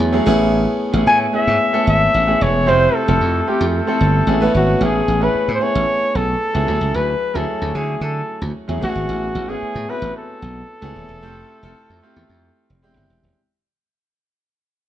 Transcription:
Already playing: F#3 A3 C#4 E4 G#4
0.00 E2
0.12 F#3 A3 C#4 E4 G#4
0.26 A1 A3 B3 C#4 E4 G#4
0.93 A1 A3 B3 C#4 E4 G#4
1.06 A2 G#5
1.33 A3 B3 C#4 E4 G#4 E5
1.47 G#2
1.73 A3 B3 C#4 E4 A4
1.87 G#1 E5
2.14 A1
2.27 A3 B3 C#4 E4 G#4
2.41 E1 C#5
2.66 F1 A3 C4 E4 F4 G4 C5
2.95 A4
3.08 F1 A3 C4 E4 F4 A4
3.21 F2
3.47 A3 C4 E4 F4 G4
3.61 F2
3.69 G#4
3.76 A4
3.87 A3 C4 E4 F4 A4
4.01 G1
4.27 A1 A3 B3 C#4 E4 G#4
4.41 A3 B3 C#4 E4 B4
4.54 G#1 F#4
4.80 A1 A3 B3 C#4 E4 G#4
5.08 A1
5.20 A3 B3 C#4 E4 G#4 B4
5.35 muted slap bass stroke
5.48 A2
5.55 C5
5.60 A3 B3 C#4 E4 G#4 C#5
5.75 A1
6.15 B1 A4
6.54 C#2 A3 B3 C#4 E4 G#4
6.66 D2 F#3 A3 C#4 E4 G#4
6.81 C#2
6.94 D2 B4
7.34 D2 F#3 A3 C#4 E4 G#4 A4
7.62 D2
7.74 D3 F#3 A3 C#4 E4 G#4 G#5
8.01 D3 A4
8.42 D2
8.68 E2 F#3 A3 C#4 E4 G#4
8.81 A1 A3 B3 C#4 E4 F#4
8.88 G#4
8.95 G#1
9.09 A1
9.35 A1
9.48 A3 B3 C#4 E4 G#4
9.62 muted slap bass stroke
9.75 A2
9.88 A3 B3 C4 E4 F#4 B4
9.95 C#4
10.02 A1
10.17 A4
10.42 B1
10.81 C#2 A3 B3 C#4 E4 G#4
10.96 D#1
11.09 E1
11.22 F1 A3 C4 E4 F4 G4
11.63 F1 A3 C4 E4 F4 A4
11.90 F2
12.02 A3 C4 E4 F4 G4
12.16 E2
12.29 F2
12.70 F1
12.83 E1 G#3 C4 D4 E4 G4
12.96 G1 G#3 C4 D4 E4 G4
13.10 E1
13.23 D#1

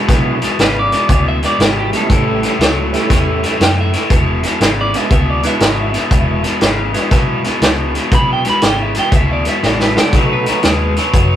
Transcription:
Already playing: G#4
0.09 B1 E2 B2 G#3 B3 D4 E4 G#4, kick, snare, closed hi-hat
0.41 E2 B2, snare, closed hi-hat
0.59 G#1 E2 C#3 B4, snare, closed hi-hat
0.79 D5
0.92 E2 B2, snare, closed hi-hat
1.09 D2 E2 B2, kick, closed hi-hat
1.28 E5
1.43 E2 B2 D5, snare, closed hi-hat
1.59 G#1 E2 B2 G4, snare, closed hi-hat
1.79 G4
1.92 E2 B2 G3 A3 C#4 E4 G4, snare, closed hi-hat
1.96 A4
2.10 A1 A2 E3, kick, closed hi-hat
2.42 A2 E3, snare, closed hi-hat
2.59 C#2 A2 F#3, snare, closed hi-hat
2.93 A2 E3 G3 A3 C#4 E4 G4, snare, closed hi-hat
3.10 E2 A2 E3, kick, snare, closed hi-hat
3.43 A2 E3, snare, closed hi-hat
3.60 F#2 A2 E3 G5, snare, closed hi-hat
3.81 E5
3.93 A2 E3, snare, closed hi-hat
4.10 E1 E2 B2, kick, closed hi-hat
4.43 E2 B2, snare, closed hi-hat
4.60 G#1 E2 C#3, snare, closed hi-hat
4.81 D5
4.93 E2 B2 G#3 B3 D4 E4 G#4 E5, snare, closed hi-hat
5.11 D2 E2 B2 E5, kick, closed hi-hat
5.30 D5
5.43 E2 B2 G#3 B3 D4 E4 B4, snare, closed hi-hat
5.47 E5
5.60 G#1 E2 B2, snare, closed hi-hat
5.93 E2 B2, snare, closed hi-hat
6.11 E1 E2 B2, kick, closed hi-hat
6.43 E2 B2, snare, closed hi-hat
6.60 G#1 E2 C#3, snare, closed hi-hat
6.93 E2 B2 G#3 B3 D4 E4 G#4, snare, closed hi-hat
7.11 B1 E2 B2, kick, snare, closed hi-hat
7.44 E2 B2, snare, closed hi-hat
7.61 C#2 E2 B2, snare, closed hi-hat
7.94 E2 B2, snare, closed hi-hat
8.12 B1 E2 B2 B5, kick, closed hi-hat
8.33 G5
8.44 E2 B2, snare, closed hi-hat
8.50 B5
8.62 G#1 E2 C#3, snare, closed hi-hat
8.66 G5
8.82 E5
8.95 E2 B2, snare, closed hi-hat
8.99 G5
9.12 D2 E2 B2, kick, closed hi-hat
9.16 E5
9.33 D5
9.45 E2 B2, snare, closed hi-hat
9.49 E5
9.63 A1 E2 B2 D5, snare
9.80 B4, snare
9.95 E2 B2 A3 B3 D#4 F#4 A4, snare
10.00 D5
10.13 B1 B2 F#3 B4, kick, snare, closed hi-hat
10.33 B4
10.46 B2 F#3, snare, closed hi-hat
10.63 D#2 B2 G#3, snare, closed hi-hat
10.96 B2 F#3, snare, closed hi-hat
11.14 F#2 B2 F#3, kick, closed hi-hat

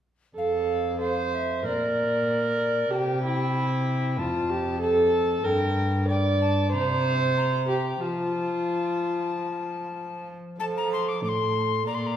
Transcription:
0.36 F2 A4 F5
1.01 C5 F5
1.34 E5
1.64 A#2 A#4 D5
2.91 C3 G4 A5
2.95 G5
3.23 E4
4.18 F2 F4 A5
4.50 G4
4.81 A4 A5
5.44 G2 A#4 G5
6.08 D5 G5
6.42 A5
6.72 C3 C5 A#5
7.38 A#5
7.69 G4
8.01 F3 F4 A5
10.59 F3 A4 A5
10.77 A#5
10.93 C6
11.09 D6
11.23 A2 A4 D6
11.29 C6
11.86 A#2 D5 A#5
11.95 C6
12.02 C6
12.07 A#5

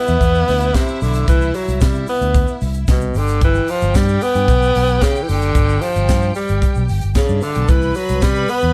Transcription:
Already playing: B3 E4 E5
0.07 E2, closed hi-hat, shaker
0.21 E2, kick, closed hi-hat, shaker
0.35 shaker
0.48 D2, open hi-hat, shaker
0.60 closed hi-hat, shaker
0.74 C3, kick, snare, closed hi-hat, shaker
0.88 shaker
1.01 B1 D3, snare, open hi-hat, shaker
1.13 closed hi-hat, shaker
1.28 C2 E3, kick, closed hi-hat, shaker
1.41 shaker
1.54 F#3, open hi-hat, shaker
1.68 C2, closed hi-hat, shaker
1.81 C3 G3, kick, snare, closed hi-hat, shaker
1.94 shaker
2.07 B3, open hi-hat, shaker
2.21 D2, closed hi-hat, shaker
2.34 kick, closed hi-hat, shaker
2.48 shaker
2.61 C2, open hi-hat, shaker
2.74 closed hi-hat, shaker
2.87 C2 B2, kick, snare, closed hi-hat, shaker
3.01 shaker
3.14 G1 D3 G4 G5, open hi-hat, shaker
3.27 closed hi-hat, shaker
3.41 E3, kick, closed hi-hat, shaker
3.55 shaker
3.67 F3, open hi-hat, shaker
3.81 G1, closed hi-hat, shaker
3.95 G2 G3, kick, snare, closed hi-hat, shaker
4.08 shaker
4.21 B3, open hi-hat, shaker
4.35 G2, closed hi-hat, shaker
4.48 B1, kick, closed hi-hat, shaker
4.62 shaker
4.75 B1, open hi-hat, shaker
4.87 closed hi-hat, shaker
5.01 C#3, kick, snare, closed hi-hat, shaker
5.16 shaker
5.22 E3
5.28 F#1 D3, open hi-hat, shaker
5.42 closed hi-hat, shaker
5.55 G1, kick, closed hi-hat, shaker
5.69 shaker
5.81 F3, open hi-hat, shaker
5.96 G1, closed hi-hat, shaker
6.09 G2, kick, snare, closed hi-hat, shaker
6.22 shaker
6.35 G3, open hi-hat, shaker
6.48 G1, closed hi-hat, shaker
6.62 kick, closed hi-hat, shaker
6.75 B1, shaker
6.88 G1, open hi-hat, shaker
7.01 G1, closed hi-hat, shaker
7.15 C#3 C#4 C#5, kick, snare, closed hi-hat, shaker
7.24 D4 D5
7.28 G2, shaker
7.33 E4 E5
7.41 D3 F4 F5, open hi-hat, shaker
7.51 G4 G5, shaker
7.56 B1, closed hi-hat
7.60 A4 A5
7.68 C2 E3 B4 B5, kick, closed hi-hat, shaker
7.82 shaker
7.94 F#3, open hi-hat, shaker
8.09 C2, closed hi-hat, shaker
8.21 C3 G3, kick, snare, closed hi-hat, shaker
8.35 shaker
8.48 B3, open hi-hat, shaker
8.61 E2, closed hi-hat, shaker

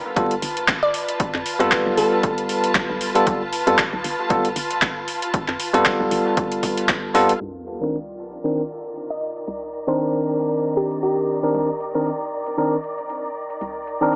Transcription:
Already playing: F4 B4
0.12 G3 A5
0.16 B3 F4 A4, kick, closed hi-hat
0.31 closed hi-hat
0.42 G1, open hi-hat
0.57 closed hi-hat
0.68 kick, clap, closed hi-hat
0.83 D5
0.94 open hi-hat
1.08 closed hi-hat
1.20 kick, closed hi-hat
1.34 F2, clap
1.46 open hi-hat
1.59 F2 G3 B3 F4 A4 B4, closed hi-hat
1.71 kick, clap, closed hi-hat
1.86 B1
1.97 G1 A4, open hi-hat
2.23 kick, closed hi-hat
2.38 closed hi-hat
2.49 open hi-hat
2.64 closed hi-hat
2.75 B1, kick, clap, closed hi-hat
2.90 B1
3.01 open hi-hat
3.15 G3 B3 F4 A4, closed hi-hat
3.27 B1, kick, closed hi-hat
3.53 open hi-hat
3.67 F2 G3 B3 F4 A4, closed hi-hat
3.78 kick, clap, closed hi-hat
3.93 B1
4.04 G1, open hi-hat
4.30 G3 B3 F4 A4, kick, closed hi-hat
4.45 closed hi-hat
4.56 G1, open hi-hat
4.71 closed hi-hat
4.82 kick, clap, closed hi-hat
5.08 open hi-hat
5.22 closed hi-hat
5.34 kick, closed hi-hat
5.48 F2, clap
5.60 open hi-hat
5.73 F2 G3 B3 F4 A4, closed hi-hat
5.85 kick, clap, closed hi-hat
6.00 B1
6.11 G1, open hi-hat
6.37 kick, closed hi-hat
6.52 closed hi-hat
6.63 kick, open hi-hat
6.77 closed hi-hat
6.89 kick, clap, closed hi-hat
7.14 F2 G3 B3 F4 A4, open hi-hat
7.29 closed hi-hat
7.41 C2 D#3, closed hi-hat, crash, sub drop
7.66 closed hi-hat
7.80 D#3 C4 D4 A#4, closed hi-hat
7.92 D5, closed hi-hat
8.15 A#5
8.33 closed hi-hat
8.44 D#3 C4 D4 A#4, closed hi-hat
8.70 closed hi-hat
8.84 closed hi-hat
8.96 closed hi-hat
9.10 D#5
9.36 closed hi-hat
9.47 C2, closed hi-hat
9.73 closed hi-hat
9.87 D#3 C4 D4 A#4 C5, closed hi-hat
9.99 closed hi-hat
10.40 closed hi-hat
10.51 closed hi-hat
10.77 G4, closed hi-hat
10.91 closed hi-hat
11.03 G4, closed hi-hat
11.43 D#3 C4 D4 A#4, closed hi-hat
11.54 C2, closed hi-hat
11.80 closed hi-hat
11.94 D#3 C4 D4 A#4, closed hi-hat
12.06 closed hi-hat
12.46 closed hi-hat
12.57 D#3 C4 D4 A#4, closed hi-hat
12.84 closed hi-hat
12.98 closed hi-hat
13.10 closed hi-hat
13.50 closed hi-hat
13.61 C2, closed hi-hat
13.87 closed hi-hat
14.01 D#3 C4 D4 A#4, closed hi-hat

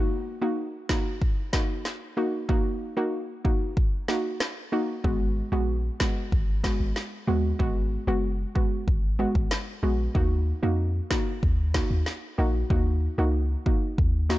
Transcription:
Already playing: A#3 D#4 F#4
0.41 A#3 D#4 F#4
0.89 A#3 D#4 F#4, kick, snare
1.22 kick
1.53 A#3 D#4 F#4, kick, snare
1.85 snare
2.17 A#3 D#4 F#4
2.49 A#3 D#4 F#4, kick
2.97 A#3 D#4 F#4
3.45 A#3 D#4 F#4, kick
3.77 kick
4.08 A#3 D#4 F#4, snare
4.40 cross-stick, snare
4.72 A#3 D#4 F#4
5.04 G#1 G#3 B3 F#4, kick
5.52 A#1 G#3 B3 F#4
6.00 G#3 B3 F#4, kick, snare
6.32 G#1, kick
6.64 G#3 B3 F#4, kick, snare
6.80 G#1
6.96 snare
7.27 D#2 G#3 B3 F#4
7.59 G#1 G#3 B3 F#4, kick
8.07 F#1 G#3 B3 F#4
8.55 G#3 B3 F#4, kick
8.88 G#1, kick
9.19 G#3 B3 F#4
9.35 G#1, kick
9.51 snare
9.83 A#1 G#3 B3 F#4
10.15 D#2 A#3 D#4 F#4, kick
10.63 F2 A#3 D#4 F#4
11.10 A#3 D#4 F#4, kick, snare
11.43 D#2, kick
11.74 A#3 D#4 F#4, kick, snare
11.90 D#2
12.06 snare
12.38 A#1 A#3 D#4 F#4
12.70 D#2 A#3 D#4 F#4, kick
13.18 C#2 A#3 D#4 F#4
13.66 A#3 D#4 F#4, kick
13.98 D#2, kick
14.30 A#3 D#4 F#4, snare

